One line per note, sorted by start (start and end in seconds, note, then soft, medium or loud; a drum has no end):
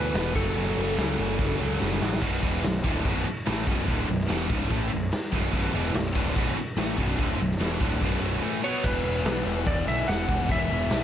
0.00 0.12 D2 medium
0.00 0.13 E2 medium
0.00 0.33 E2 medium
0.00 0.14 B2 medium
0.00 0.34 B2 loud
0.00 0.15 E3 loud
0.00 0.35 E3 loud
0.00 0.35 B4 medium
0.14 0.32 E1 medium
0.14 0.34 E2 loud
0.14 0.34 B2 loud
0.14 0.35 E3 loud
0.14 snare loud
0.14 open hi-hat medium
0.35 0.53 F#1 medium
0.35 0.55 F#2 loud
0.35 0.56 C#3 loud
0.35 0.56 F#3 loud
0.35 1.98 A4 medium
0.35 kick loud
0.35 open hi-hat medium
0.56 0.74 F#1 medium
0.56 0.76 F#2 loud
0.56 0.76 C#3 loud
0.56 0.77 F#3 loud
0.56 open hi-hat medium
0.77 0.95 F#1 medium
0.77 0.96 F#2 medium
0.77 0.97 C#3 medium
0.77 0.98 F#3 medium
0.77 open hi-hat medium
0.97 1.16 C#2 loud
0.97 1.17 F#2 medium
0.97 1.18 C#3 medium
0.97 1.19 F#3 medium
0.97 snare loud
0.97 open hi-hat medium
1.09 snare soft
1.18 1.36 F#1 loud
1.18 1.37 F#2 loud
1.18 1.38 C#3 loud
1.18 1.39 F#3 loud
1.18 open hi-hat medium
1.38 1.57 F#1 medium
1.38 1.59 F#2 medium
1.38 1.59 C#3 medium
1.38 1.60 F#3 medium
1.38 kick loud
1.38 open hi-hat medium
1.60 1.78 C#2 medium
1.60 1.78 F#2 medium
1.60 1.79 C#3 medium
1.60 1.79 F#3 loud
1.60 open hi-hat medium
1.80 1.99 F#1 medium
1.80 2.00 F#2 loud
1.80 2.01 C#3 loud
1.80 2.01 F#3 loud
1.80 snare medium
1.92 snare medium
2.01 2.20 A1 medium
2.01 2.21 F#2 medium
2.01 2.21 C#3 medium
2.01 2.22 F#3 loud
2.01 snare medium
2.13 snare medium
2.22 2.42 B0 medium
2.22 2.42 B1 medium
2.22 2.43 F#2 medium
2.22 2.43 B2 loud
2.22 kick loud
2.22 crash loud
2.22 crash medium
2.43 2.62 E1 loud
2.43 2.63 E2 medium
2.43 2.63 B2 loud
2.43 2.64 E3 loud
2.43 kick loud
2.54 snare soft
2.63 2.84 B0 medium
2.63 2.81 B1 medium
2.63 2.81 F#2 medium
2.63 snare loud
2.63 crash medium
2.84 3.04 D1 loud
2.84 3.05 D2 medium
2.84 3.05 A2 loud
2.84 3.05 D3 loud
2.84 kick loud
2.96 snare soft
3.05 3.25 B0 loud
3.05 3.26 B1 medium
3.05 3.26 F#2 loud
3.05 3.26 B2 medium
3.05 kick loud
3.05 crash medium
3.26 muted distorted electric guitar stroke medium
3.26 muted overdriven electric guitar stroke medium
3.26 muted picked electric bass stroke soft
3.46 3.66 A1 medium
3.46 3.67 A2 medium
3.46 3.67 E3 loud
3.46 3.68 A3 loud
3.46 snare loud
3.46 crash medium
3.67 3.86 B0 medium
3.67 3.87 B1 medium
3.67 3.88 F#2 loud
3.67 3.88 B2 loud
3.67 kick loud
3.88 4.07 D1 medium
3.88 4.08 D2 loud
3.88 4.08 A2 loud
3.88 4.09 D3 loud
3.88 kick loud
3.88 crash medium
4.08 4.28 B0 medium
4.08 4.25 B1 medium
4.08 4.26 F#2 medium
4.20 snare soft
4.29 4.49 E1 medium
4.29 4.49 E2 medium
4.29 4.50 B2 loud
4.29 4.50 E3 loud
4.29 snare loud
4.29 crash medium
4.50 4.70 C#1 loud
4.50 4.70 C#2 medium
4.50 4.70 G#2 loud
4.50 4.71 C#3 loud
4.50 kick loud
4.61 snare soft
4.70 4.90 A1 loud
4.70 4.91 A2 loud
4.70 4.91 E3 loud
4.70 4.91 A3 loud
4.70 kick loud
4.70 crash medium
4.91 5.11 B0 medium
4.91 5.08 B1 medium
4.91 5.08 F#2 medium
5.12 snare loud
5.12 crash medium
5.33 5.52 B0 loud
5.33 5.52 B1 medium
5.33 5.53 F#2 loud
5.33 5.53 B2 loud
5.33 kick loud
5.53 5.73 B0 medium
5.53 5.73 B1 medium
5.53 5.74 F#2 loud
5.53 5.73 B2 loud
5.53 kick loud
5.53 crash medium
5.74 5.93 E1 loud
5.74 5.94 E2 medium
5.74 5.94 B2 medium
5.74 5.95 E3 loud
5.86 snare soft
5.94 6.14 B0 medium
5.94 6.11 B1 medium
5.94 6.11 F#2 medium
5.94 snare loud
5.94 crash medium
6.15 6.35 D1 loud
6.15 6.35 D2 medium
6.15 6.36 A2 loud
6.15 6.36 D3 loud
6.15 kick loud
6.27 snare soft
6.35 6.55 B0 medium
6.35 6.54 B1 medium
6.35 6.56 F#2 loud
6.35 6.56 B2 loud
6.35 kick loud
6.35 crash medium
6.56 muted overdriven electric guitar stroke medium
6.56 muted picked electric bass stroke soft
6.56 muted distorted electric guitar stroke medium
6.77 6.96 A1 loud
6.77 6.97 A2 loud
6.77 6.98 E3 loud
6.77 6.98 A3 loud
6.77 snare loud
6.77 crash medium
6.97 7.18 B0 loud
6.97 7.18 B1 loud
6.97 7.18 F#2 medium
6.97 7.19 B2 loud
6.97 kick loud
7.18 7.38 D1 medium
7.18 7.39 D2 medium
7.18 7.39 A2 loud
7.18 7.39 D3 loud
7.18 kick loud
7.18 crash medium
7.40 7.59 B0 medium
7.40 7.57 B1 medium
7.40 7.57 F#2 medium
7.51 snare soft
7.60 7.79 E1 loud
7.60 7.80 E2 medium
7.60 7.81 B2 loud
7.60 7.81 E3 loud
7.60 snare loud
7.60 crash medium
7.81 8.00 D1 loud
7.81 8.01 D2 medium
7.81 8.02 A2 medium
7.81 8.02 D3 loud
7.81 kick loud
8.01 8.40 B0 medium
8.01 8.42 B1 medium
8.01 8.42 F#2 loud
8.01 8.43 B2 medium
8.01 kick loud
8.01 crash medium
8.42 8.63 A2 loud
8.42 8.63 E3 loud
8.42 8.63 A3 loud
8.64 8.83 B2 medium
8.64 8.84 F#3 loud
8.64 8.84 B3 loud
8.64 8.85 C#5 medium
8.84 9.02 E1 loud
8.84 9.04 E2 medium
8.84 9.04 B2 loud
8.84 9.05 E3 loud
8.84 9.69 B4 medium
8.84 kick loud
8.84 crash loud
9.04 9.23 E1 medium
9.04 9.24 E2 medium
9.04 9.24 B2 medium
9.04 9.26 E3 medium
9.04 open hi-hat medium
9.25 9.43 B1 loud
9.25 9.45 E2 medium
9.25 9.45 B2 medium
9.25 9.47 E3 medium
9.25 snare loud
9.25 open hi-hat medium
9.45 9.63 E1 medium
9.45 9.65 E2 loud
9.45 9.65 B2 loud
9.45 9.66 E3 loud
9.45 open hi-hat medium
9.66 9.85 E1 medium
9.66 9.85 E2 medium
9.66 9.86 B2 medium
9.66 9.86 E3 medium
9.66 9.88 D5 loud
9.66 kick loud
9.66 open hi-hat medium
9.86 10.05 B1 medium
9.86 10.06 E2 medium
9.86 10.07 B2 medium
9.86 10.08 E3 loud
9.86 10.09 E5 medium
9.86 open hi-hat medium
10.07 10.26 E1 medium
10.07 10.27 E2 loud
10.07 10.28 B2 loud
10.07 10.29 E3 loud
10.07 10.50 F#5 loud
10.07 snare loud
10.07 open hi-hat medium
10.29 10.46 E1 loud
10.29 10.48 E2 medium
10.29 10.49 B2 loud
10.29 10.50 E3 loud
10.29 kick medium
10.29 open hi-hat medium
10.49 10.67 E1 loud
10.49 10.69 E2 loud
10.49 10.70 B2 loud
10.49 10.71 E3 loud
10.49 11.04 E5 loud
10.49 kick loud
10.49 open hi-hat medium
10.70 10.88 E1 medium
10.70 10.89 E2 medium
10.70 10.90 B2 medium
10.70 10.90 E3 medium
10.70 open hi-hat medium
10.90 11.04 B1 medium
10.90 11.04 E2 loud
10.90 11.04 B2 medium
10.90 11.04 E3 loud
10.90 snare loud
10.90 open hi-hat medium